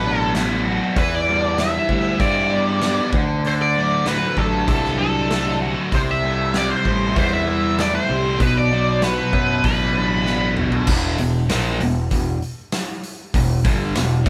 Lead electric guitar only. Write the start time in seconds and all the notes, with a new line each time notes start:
Already playing: B4
0.20 A4
0.98 B4
1.15 D5
1.60 E5
2.21 D5
3.47 C5
3.62 D5
4.08 B4
4.38 A4
4.68 A4
4.99 A4
5.95 C5
6.11 E5
6.57 D5
6.71 C5
7.18 C5
7.33 E5
7.80 D5
7.95 C5
8.41 B4
8.57 D5
9.04 B4
9.65 B4